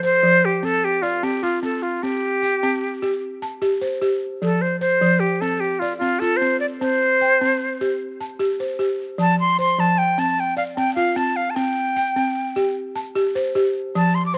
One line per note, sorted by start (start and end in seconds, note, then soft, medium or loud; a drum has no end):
0.03 0.63 C5 medium
0.03 0.47 C5 medium
0.23 0.63 F3 medium
0.45 0.66 G4 medium
0.63 1.03 C4 medium
0.63 0.86 A4 medium
0.84 1.04 G4 medium
1.02 1.25 F4 medium
1.02 1.63 D5 medium
1.23 1.62 C4 medium
1.23 1.45 G4 medium
1.43 2.03 F4 medium
1.43 1.63 F4 medium
1.63 2.02 C4 medium
1.63 1.84 A4 medium
1.82 2.04 F4 medium
2.03 2.43 C4 medium
2.03 3.23 G4 medium
2.43 3.03 G5 medium
2.63 3.03 C4 medium
3.02 3.43 G4 medium
3.42 4.02 A5 medium
3.62 4.00 G4 medium
3.81 4.42 C5 medium
4.02 4.42 G4 medium
4.42 4.82 F3 medium
4.42 4.63 A4 medium
4.62 4.80 C5 medium
4.80 5.21 C5 medium
4.80 5.41 C5 medium
5.01 5.42 F3 medium
5.20 5.42 G4 medium
5.41 5.82 C4 medium
5.41 5.62 A4 medium
5.60 5.81 G4 medium
5.79 5.97 F4 medium
5.79 6.41 D5 medium
5.97 6.40 C4 medium
5.97 6.21 F4 medium
6.19 6.81 F4 medium
6.19 6.38 A4 medium
6.37 6.59 C5 medium
6.42 6.80 C4 medium
6.60 6.66 D5 medium
6.80 7.21 C4 medium
6.80 7.96 C5 loud
7.21 7.81 G5 medium
7.41 7.81 C4 medium
7.81 8.20 G4 medium
8.21 8.80 A5 medium
8.39 8.78 G4 medium
8.60 9.19 C5 medium
8.79 9.19 G4 medium
9.18 9.58 F3 medium
9.18 9.38 A5 loud
9.18 shaker medium
9.40 9.58 C6 loud
9.59 10.18 C5 medium
9.59 9.81 C6 loud
9.68 shaker soft
9.78 10.18 F3 medium
9.78 10.00 A5 medium
9.88 shaker soft
9.98 10.21 G5 medium
10.08 shaker soft
10.18 10.58 C4 medium
10.18 10.41 A5 medium
10.18 shaker medium
10.40 10.57 G5 medium
10.57 11.17 D5 medium
10.57 10.63 F5 medium
10.76 11.15 C4 medium
10.76 10.94 G5 medium
10.95 11.56 F4 medium
10.95 11.18 F5 medium
10.95 shaker soft
11.16 11.55 C4 medium
11.16 11.38 A5 medium
11.16 shaker medium
11.36 11.52 F5 medium
11.50 11.57 A5 medium
11.55 11.96 C4 medium
11.55 12.75 G5 medium
11.55 shaker medium
11.96 12.56 G5 medium
12.07 shaker soft
12.16 12.56 C4 medium
12.27 shaker soft
12.46 shaker soft
12.56 12.95 G4 medium
12.56 shaker medium
12.96 13.55 A5 medium
13.05 shaker soft
13.15 13.54 G4 medium
13.35 13.94 C5 medium
13.35 shaker soft
13.55 13.94 G4 medium
13.55 shaker medium
13.95 14.34 F3 medium
13.95 14.16 A5 medium
13.95 shaker medium
14.15 14.25 C6 medium
14.26 14.36 D6 medium
14.34 14.38 C5 medium
14.34 14.38 C6 medium